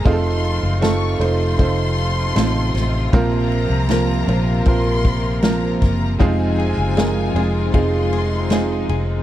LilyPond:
<<
  \new Staff \with { instrumentName = "Violin section" } { \time 4/4 \key f \phrygian \tempo 4 = 78 c'''4 des'''8 c'''2~ c'''8 | bes''2 c'''4 bes''8 bes''8 | aes''2 c'''2 | }
  \new Staff \with { instrumentName = "Clean electric guitar" } { \time 4/4 \key f \phrygian r1 | r1 | <f aes'>16 ees'16 aes'16 c'16 aes'16 ees'16 aes'16 c'16 <f aes'>16 ees'16 aes'16 c'16 aes'16 ees'16 aes'16 c'16 | }
  \new Staff \with { instrumentName = "Upright piano" } { \time 4/4 \key f \phrygian <a c' ees' f' aes' a'>4 <a c' ees' f' a'>8 <a c' ees' f' c''>8 <a c' ees' f' c''>4 <a c' ees' f' a'>4 | <f bes c' f' bes'>4 <f bes c' f' bes'>8 <f bes c' f' c''>8 <f bes c' f' bes'>4 <f bes c' f' bes'>4 | <aes c' ees' f' aes'>4 <aes c' ees' f' bes'>8 <aes c' ees' f' aes'>8 <aes c' ees' f' aes'>4 <aes c' ees' f' aes'>4 | }
  \new Staff \with { instrumentName = "Upright piano" } { \clef bass \time 4/4 \key f \phrygian r1 | bes,4. r2 r8 | r1 | }
  \new Staff \with { instrumentName = "String section" } { \time 4/4 \key f \phrygian << { <a ees' f'>1 | <bes bes'>1 | <aes ees' f'>1 | } \\ { <c f>1~ | <c f>1~ | <c f>1 | } >> }
  \new Staff \with { instrumentName = "Fingered electric bass" } { \clef bass \time 4/4 \key f \phrygian f,,8. ges,,8. f,,8 f,,4 a,,8 a,,8 | bes,,8. c,8. bes,,8 bes,,4. ges,,8 | f,,8. ges,,8. f,,8 f,,4. f,,8 | }
  \new DrumStaff \with { instrumentName = "Drums" } \drummode { \time 4/4 <bd cymr>8 cymr8 <cymr sn>8 cymr8 <bd cymr>8 cymr8 <cymr sn>8 <cymr sn>8 | <bd cymr>8 cymr8 <cymr sn>8 cymr8 <bd cymr>8 <bd cymr>8 <cymr sn>8 <bd cymr sn>8 | <bd cymr>8 cymr8 <cymr sn>8 cymr8 <bd cymr>8 cymr8 <cymr sn>8 cymr8 | }
>>